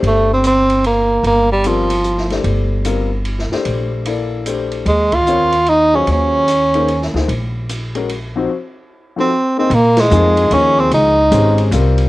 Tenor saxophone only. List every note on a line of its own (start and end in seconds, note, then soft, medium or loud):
0.07 0.30 A3 medium
0.33 0.45 C4 medium
0.47 0.83 C4 medium
0.87 1.23 A#3 medium
1.27 1.50 A#3 medium
1.52 1.68 G3 medium
1.67 2.32 F3 medium
4.88 5.16 G#3 medium
5.15 5.71 F4 medium
5.69 5.97 D#4 medium
5.95 6.09 C#4 medium
6.12 7.13 C#4 medium
9.20 9.56 C4 medium
9.59 9.76 C4 medium
9.75 10.02 A#3 medium
10.00 10.55 G#3 medium
10.53 10.81 C#4 medium
10.80 10.93 C4 medium
10.94 11.70 D#4 medium